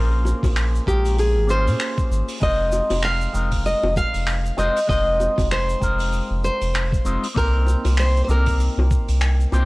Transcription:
Already playing: A#1 A#3 C#4 F4 G#4 A#4 C5
0.25 high bongo, shaker
0.43 A#1, kick, open hi-hat, high bongo, shaker
0.56 finger snap, open hi-hat, shaker
0.76 shaker
0.86 A#1 G#3 A#3 C#4 F4 G4 A#4, kick, shaker
1.05 open hi-hat, shaker
1.18 G#4, open hi-hat, shaker
1.36 G#1
1.47 A#3 C#4 F4 G#4 C5, shaker
1.67 A#2, open hi-hat, shaker
1.80 finger snap, open hi-hat, shaker
1.98 kick, shaker
2.11 G#1, shaker
2.28 open hi-hat, shaker
2.40 F1 G#3 C4 D#4 F4 C5 D#5, kick, open hi-hat, shaker
2.72 high bongo, shaker
2.90 F1, open hi-hat, high bongo, shaker
3.03 F5, finger snap, open hi-hat, shaker
3.21 shaker
3.33 F1 G#3 C4 D#4 F4 A#4, shaker
3.51 kick, open hi-hat, shaker
3.65 D#5, open hi-hat, shaker
3.83 F1, high bongo
3.96 F5, kick, shaker
4.14 F1, open hi-hat, shaker
4.27 finger snap, open hi-hat, shaker
4.46 shaker
4.57 F1 G#3 C4 D#4 F4 C5 D#5, high bongo, shaker
4.76 open hi-hat, shaker
4.87 F1 G#3 C4 D#4 F4 C5 D#5, kick, open hi-hat, shaker
5.20 high bongo, shaker
5.38 F1, kick, open hi-hat, high bongo, shaker
5.51 C5, finger snap, open hi-hat, shaker
5.69 shaker
5.80 F1 G#3 C4 D#4 F4 A#4, kick, shaker
5.99 open hi-hat, shaker
6.12 open hi-hat, shaker
6.31 F1
6.44 C5, shaker
6.61 F1, open hi-hat, shaker
6.74 finger snap, open hi-hat, shaker
6.92 kick, shaker
7.05 F1 G#3 C4 D#4 F4 C5, shaker
7.23 open hi-hat, shaker
7.34 C2 A#3 C4 D#4 G4 A#4 C5, kick, shaker
7.67 high bongo, shaker
7.84 C2, open hi-hat, high bongo, shaker
7.97 C5, finger snap, open hi-hat, shaker
8.16 shaker
8.24 A#3 C4 C5
8.29 C2 D#4 G4 A#4, shaker
8.46 kick, open hi-hat, shaker
8.60 open hi-hat, shaker
8.78 C2, high bongo
8.91 kick, shaker
9.08 C2, open hi-hat, shaker
9.21 finger snap, open hi-hat, shaker
9.40 shaker
9.52 C2 A#3 C4 D#4 G4 C5, high bongo, shaker

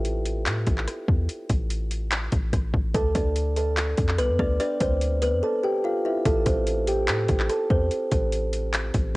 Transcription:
Already playing: A1
0.05 closed hi-hat
0.25 closed hi-hat
0.46 A2, clap, closed hi-hat
0.66 A1, kick, closed hi-hat
0.78 clap
0.87 cross-stick, closed hi-hat
1.08 E2, kick
1.29 closed hi-hat
1.49 A1, kick, closed hi-hat
1.70 closed hi-hat
1.91 closed hi-hat
2.12 clap, closed hi-hat
2.32 A1, kick, closed hi-hat
2.53 A1, kick, cross-stick, closed hi-hat
2.74 A1, kick
2.94 D2 A4 A5, kick, closed hi-hat
3.15 D2 D4 D5, kick, closed hi-hat
3.36 closed hi-hat
3.56 A4 A5, closed hi-hat
3.77 clap, closed hi-hat
3.97 F2, kick, closed hi-hat
4.09 clap
4.18 C2 B3 B4, cross-stick, closed hi-hat
4.30 F2
4.39 D2 D4 D5, kick
4.60 D4 D5, closed hi-hat
4.80 D2 C4 C5, kick, closed hi-hat
5.01 closed hi-hat
5.22 B3 B4, closed hi-hat
5.33 F2
5.43 A4 A5
5.63 G4 G5
5.84 F4 F5
6.05 E4 E5
6.25 A1 A4 A5, kick, closed hi-hat
6.46 A1 C4 C5, kick, closed hi-hat
6.67 closed hi-hat
6.87 G4 G5, closed hi-hat
7.08 A2, clap, closed hi-hat
7.29 A1, kick, closed hi-hat
7.40 clap
7.50 A4 A5, cross-stick, closed hi-hat
7.70 E2 C4 C5, kick
7.91 closed hi-hat
8.12 A1, kick, closed hi-hat
8.32 closed hi-hat
8.53 closed hi-hat
8.74 clap, closed hi-hat
8.94 A1, kick, closed hi-hat

